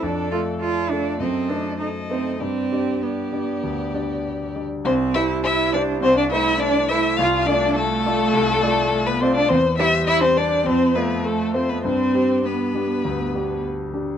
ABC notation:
X:1
M:4/4
L:1/16
Q:1/4=102
K:C
V:1 name="Violin"
d4 d4 ^d4 d4 | d4 d8- d2 z2 | c2 e2 e2 d2 c d e2 d2 e2 | f2 d2 A8- A B c d |
c2 e2 e c d2 c2 B2 A2 c B | c4 B8 z4 |]
V:2 name="Cello"
D2 F2 F2 D2 C2 D2 ^D2 C2 | C4 B,8 z4 | C2 E2 E2 D2 C D E2 D2 E2 | F2 D2 A,8- A, B, C D |
C2 E2 E C D2 C2 B,2 A,2 C B, | C4 B,8 z4 |]
V:3 name="Grand piano"
F,,2 [A,FA]4 [A,FA]2 ^F,,2 [A,^Dc]4 [A,Dc]2 | G,,2 [G,Dd]4 [G,Dd]2 D,,2 [G,Dd]4 [G,Dd]2 | C,,2 [G,Ec]4 [G,Ec]2 C,,2 [A,Ec]4 [A,Ec]2 | C,,2 [A,Fd]4 [A,Fd]2 C,,2 [A,Fd]4 [A,Fd]2 |
E,,2 [G,Gc]4 [G,Gc]2 F,,2 [A,Fc]4 [A,Fc]2 | G,,2 [G,DG]4 [G,DG]2 D,,2 [G,DG]4 [G,DG]2 |]
V:4 name="Violin"
A4 A4 A4 A4 | G4 G8- G2 z2 | C2 E2 E2 D2 C D E2 D2 E2 | F2 D2 A,8- A, B, C D |
C2 E2 E C D2 C2 B,2 A,2 C B, | C4 B,8 z4 |]